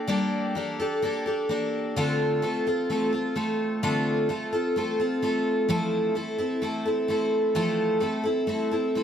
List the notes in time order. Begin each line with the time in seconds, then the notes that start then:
0.07 G3 A#3 D4 G4 A4
0.55 A#3 D4 G4 A4
0.80 D4 G4 A4
1.02 A#3 D4 G4 A4
1.26 D4 G4 A4
1.49 A#3 D4 G4 A4
1.96 D3 A3 C4 F4 A4
2.42 A3 C4 F4 A4
2.67 C4 F4 A4
2.90 A3 C4 F4 A4
3.13 C4 F4 A4
3.36 A3 C4 F4 A4
3.83 D3 A3 C4 F4 A4
4.29 A3 C4 F4 A4
4.53 C4 F4 A4
4.76 A3 C4 F4 A4
5.00 C4 F4 A4
5.22 A3 C4 F4 A4
5.68 F3 A3 C4 E4 A4
6.15 A3 C4 E4 A4
6.38 C4 E4 A4
6.62 A3 C4 E4 A4
6.85 C4 E4 A4
7.08 A3 C4 E4 A4
7.55 F3 A3 C4 E4 A4
8.00 A3 C4 E4 A4
8.24 C4 E4 A4
8.47 A3 C4 E4 A4
8.71 C4 E4 A4
8.95 A3 C4 E4 A4